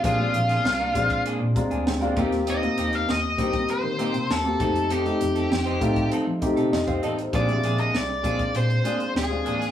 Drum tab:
HH |x-xx--xxx-xx-xxx|xxxx--xxx-xx-xxx|xxxx-xxxx-xx-xxx|xxxx--xxxxxx--xx|
SD |---oo-------o--o|----o-------o---|----o-------o---|----o-------o--o|
BD |o-----oo--o---o-|------oo------o-|------oo--o--o--|o-----oo--------|